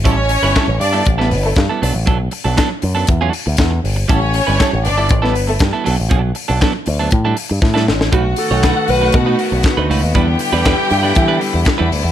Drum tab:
HH |x-o-x-o-x-o-x-o-|x-o-x-o-x-o-x-o-|x-o-x-o-x-o-x-o-|--o-x-o-x-o-----|
CP |----x-------x---|----x-------x---|----x-------x---|----x-----------|
SD |----o----o--o---|----o-------o---|----o----o--o---|----o-------oooo|
BD |o---o---o---o---|o---o---o---o---|o---o---o---o---|o---o---o---o---|

HH |x-o-x-o-x-o-x-o-|x-o-x-o-x-o-x-o-|
CP |----x-------x---|----x-------x---|
SD |----o-------o---|----o-------o---|
BD |o---o---o---o---|o---o---o---o---|